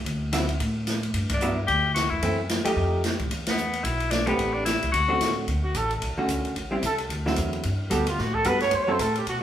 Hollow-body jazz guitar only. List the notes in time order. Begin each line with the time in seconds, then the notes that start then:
0.33 D3 F#3 C4 E4
1.42 F#3 B3 E4
2.23 E3 A3 C4
2.65 F3 A3 D#4 G4
4.27 A3 C4 G4 B4
5.08 D3 A3 C4 F#4
6.18 D3 A3 C#4 F#4
6.71 G3 C4 E4
7.26 D3 F#3 C4 E4
7.90 G3 B3 F#4 A4
8.45 G3 B3 F#4 A4
8.88 F#3 C4 E4 A4